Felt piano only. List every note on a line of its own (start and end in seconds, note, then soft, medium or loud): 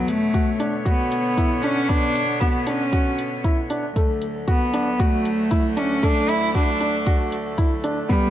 0.34 0.47 F#4 medium
0.60 0.73 D4 medium
0.85 1.12 F#4 medium
1.38 1.51 E4 medium
1.64 1.77 D4 medium
1.89 2.16 B3 medium
2.41 2.54 F#4 medium
2.67 2.80 D4 medium
2.93 3.19 F#4 medium
3.44 3.58 E4 medium
3.70 3.83 D4 medium
3.96 4.23 A3 medium
4.48 4.61 F#4 medium
4.74 4.87 D4 medium
5.00 5.26 F#4 medium
5.51 5.64 E4 medium
5.77 5.90 D4 medium
6.03 6.30 A3 medium
6.55 6.68 F#4 medium
6.81 6.94 D4 medium
7.06 7.33 F#4 medium
7.58 7.71 E4 medium
7.84 7.97 D4 medium
8.09 8.30 B3 medium